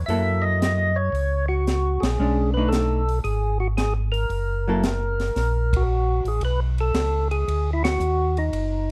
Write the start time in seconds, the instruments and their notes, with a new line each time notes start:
0.06 tonewheel organ F#2 E5, hollow-body jazz guitar F#3 A#3 E4 A4, open hi-hat
0.42 tonewheel organ D#5
0.62 snare, closed hi-hat
0.96 tonewheel organ C#5
1.12 tonewheel organ C#2, open hi-hat
1.48 tonewheel organ F#4
1.67 snare, closed hi-hat
2.00 tonewheel organ A#1 G#4, snare, ride
2.18 tonewheel organ B1, hollow-body jazz guitar G#3 C#4 D4
2.54 hollow-body jazz guitar A3 D4, tonewheel organ B4
2.58 hollow-body jazz guitar D#4
2.68 tonewheel organ A4
2.73 snare, closed hi-hat
3.09 open hi-hat
3.24 tonewheel organ G#1 G#4, open hi-hat
3.60 tonewheel organ F#4
3.77 tonewheel organ G#4, snare, closed hi-hat
4.12 tonewheel organ A#4, open hi-hat
4.30 tonewheel organ F#1, open hi-hat
4.68 hollow-body jazz guitar F#3 A#3 E4 A4
4.83 snare, closed hi-hat
5.20 snare, open hi-hat
5.36 tonewheel organ A#1, snare, open hi-hat
5.73 tonewheel organ F#4, kick, ride
6.25 tonewheel organ A1 G#4, open hi-hat
6.41 tonewheel organ B1 B4, ride
6.78 tonewheel organ A4, ride
6.93 tonewheel organ C#2, snare, hi-hat pedal, ride
7.31 tonewheel organ G#4, ride
7.48 tonewheel organ D2, ride
7.73 tonewheel organ E4
7.84 tonewheel organ F#4, snare, ride
8.00 tonewheel organ D#2, hi-hat pedal
8.37 tonewheel organ D#4, ride
8.52 tonewheel organ F#1, ride